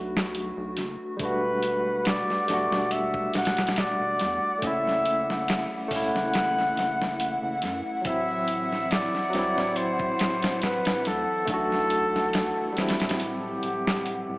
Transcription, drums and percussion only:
0.17 snare
0.35 closed hi-hat
0.77 snare, closed hi-hat
1.19 kick, closed hi-hat
1.63 closed hi-hat
2.05 snare, closed hi-hat
2.30 snare
2.48 snare, closed hi-hat
2.72 snare
2.91 closed hi-hat
3.14 kick
3.34 snare, closed hi-hat
3.45 snare, closed hi-hat
3.57 snare, closed hi-hat
3.67 snare, closed hi-hat
3.76 snare, closed hi-hat
4.19 snare, closed hi-hat
4.62 kick, closed hi-hat
4.87 snare
5.05 closed hi-hat
5.30 snare
5.48 snare, closed hi-hat
5.91 kick, open hi-hat
6.16 snare
6.34 snare, closed hi-hat
6.59 snare
6.77 snare, closed hi-hat
7.02 snare
7.20 closed hi-hat
7.62 snare, closed hi-hat
8.05 kick, closed hi-hat
8.48 closed hi-hat
8.72 snare
8.91 snare, closed hi-hat
9.15 snare
9.33 snare, closed hi-hat
9.58 snare
9.76 closed hi-hat
9.99 kick
10.19 snare, closed hi-hat
10.42 snare, closed hi-hat
10.62 snare, closed hi-hat
10.85 snare, closed hi-hat
11.05 snare, closed hi-hat
11.48 kick, closed hi-hat
11.72 snare
11.90 closed hi-hat
12.16 snare
12.33 snare, closed hi-hat
12.77 snare, closed hi-hat
12.89 snare, closed hi-hat
13.00 snare, closed hi-hat
13.09 snare, closed hi-hat
13.20 closed hi-hat
13.63 closed hi-hat
13.87 snare
14.06 closed hi-hat

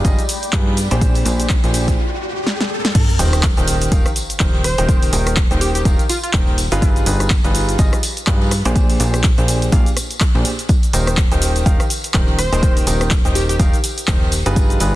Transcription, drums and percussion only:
0.05 kick, closed hi-hat, tambourine, shaker
0.18 closed hi-hat, tambourine, shaker
0.29 open hi-hat, tambourine, shaker
0.42 closed hi-hat, tambourine, shaker
0.53 kick, clap, closed hi-hat, shaker
0.77 open hi-hat, tambourine, shaker
0.90 closed hi-hat, tambourine, shaker
1.01 kick, closed hi-hat, tambourine, shaker
1.14 open hi-hat, tambourine, shaker
1.25 open hi-hat, tambourine, shaker
1.40 closed hi-hat, tambourine, shaker
1.49 kick, clap, closed hi-hat, shaker
1.64 closed hi-hat, tambourine, shaker
1.74 open hi-hat, tambourine, shaker
1.88 kick, closed hi-hat, tambourine, shaker
2.47 snare
2.61 snare
2.85 snare
2.95 kick, closed hi-hat, crash, tambourine, shaker
3.09 closed hi-hat, tambourine, shaker
3.19 open hi-hat, tambourine, shaker
3.33 cross-stick, closed hi-hat, tambourine, shaker
3.43 kick, clap, closed hi-hat, tambourine, shaker
3.57 closed hi-hat, tambourine, shaker
3.68 open hi-hat, tambourine, shaker
3.81 closed hi-hat, tambourine, shaker
3.92 kick, closed hi-hat, tambourine, shaker
4.06 cross-stick, closed hi-hat, tambourine, shaker
4.16 open hi-hat, tambourine, shaker
4.30 closed hi-hat, tambourine, shaker
4.40 kick, clap, closed hi-hat, tambourine, shaker
4.54 tambourine
4.64 cross-stick, open hi-hat, tambourine, shaker
4.78 closed hi-hat, tambourine, shaker
4.88 kick, closed hi-hat, tambourine, shaker
5.02 open hi-hat, tambourine, shaker
5.13 open hi-hat, tambourine, shaker
5.26 cross-stick, closed hi-hat, tambourine, shaker
5.37 kick, clap, closed hi-hat, tambourine, shaker
5.51 closed hi-hat, tambourine, shaker
5.61 open hi-hat, tambourine, shaker
5.75 closed hi-hat, tambourine, shaker
5.85 kick, closed hi-hat, tambourine, shaker
5.99 closed hi-hat, tambourine, shaker
6.09 open hi-hat, tambourine, shaker
6.23 closed hi-hat, tambourine, shaker
6.33 kick, clap, closed hi-hat, shaker
6.47 tambourine
6.58 open hi-hat, tambourine, shaker
6.72 closed hi-hat, tambourine, shaker
6.82 kick, closed hi-hat, tambourine, shaker
6.96 closed hi-hat, tambourine, shaker
7.06 open hi-hat, tambourine, shaker
7.20 cross-stick, closed hi-hat, tambourine, shaker
7.30 kick, clap, closed hi-hat, tambourine, shaker
7.44 closed hi-hat, tambourine, shaker
7.55 open hi-hat, tambourine, shaker
7.69 closed hi-hat, tambourine, shaker
7.78 kick, closed hi-hat, tambourine, shaker
7.93 cross-stick, closed hi-hat, tambourine, shaker
8.03 open hi-hat, tambourine, shaker
8.17 closed hi-hat, tambourine, shaker
8.27 kick, clap, closed hi-hat, shaker
8.41 tambourine
8.51 cross-stick, open hi-hat, tambourine, shaker
8.65 closed hi-hat, tambourine, shaker
8.75 kick, closed hi-hat, tambourine, shaker
8.89 open hi-hat, tambourine, shaker
9.00 open hi-hat, tambourine, shaker
9.14 cross-stick, closed hi-hat, tambourine, shaker
9.24 kick, clap, closed hi-hat, shaker
9.38 closed hi-hat, tambourine, shaker
9.48 open hi-hat, tambourine, shaker
9.62 closed hi-hat, tambourine, shaker
9.72 kick, closed hi-hat, tambourine, shaker
9.86 closed hi-hat, tambourine, shaker
9.97 cross-stick, open hi-hat, tambourine, shaker
10.11 closed hi-hat, tambourine, shaker
10.20 kick, clap, closed hi-hat, tambourine, shaker
10.35 tambourine
10.45 open hi-hat, tambourine, shaker
10.59 closed hi-hat, tambourine, shaker
10.69 kick, closed hi-hat, tambourine, shaker
10.83 closed hi-hat, tambourine, shaker
10.93 open hi-hat, tambourine, shaker
11.07 cross-stick, closed hi-hat, tambourine, shaker
11.17 kick, clap, closed hi-hat, tambourine, shaker
11.32 closed hi-hat, tambourine, shaker
11.41 open hi-hat, tambourine, shaker
11.56 closed hi-hat, tambourine, shaker
11.66 kick, closed hi-hat, tambourine, shaker
11.80 cross-stick, closed hi-hat, tambourine, shaker
11.90 open hi-hat, tambourine, shaker
12.04 closed hi-hat, tambourine, shaker
12.14 kick, clap, closed hi-hat, tambourine, shaker
12.28 tambourine
12.38 cross-stick, open hi-hat, tambourine, shaker
12.53 closed hi-hat, tambourine, shaker
12.62 kick, closed hi-hat, tambourine, shaker
12.77 open hi-hat, tambourine, shaker
12.87 open hi-hat, tambourine, shaker
13.01 cross-stick, closed hi-hat, tambourine, shaker
13.11 kick, clap, closed hi-hat, tambourine, shaker
13.25 closed hi-hat, tambourine, shaker
13.35 open hi-hat, tambourine, shaker
13.49 closed hi-hat, tambourine, shaker
13.60 kick, closed hi-hat, tambourine, shaker
13.73 closed hi-hat, tambourine, shaker
13.84 open hi-hat, tambourine, shaker
13.98 closed hi-hat, tambourine, shaker
14.07 kick, clap, closed hi-hat, shaker
14.23 tambourine
14.32 open hi-hat, tambourine, shaker
14.46 closed hi-hat, tambourine, shaker
14.56 kick, closed hi-hat, tambourine, shaker
14.70 closed hi-hat, tambourine, shaker
14.80 open hi-hat, tambourine, shaker

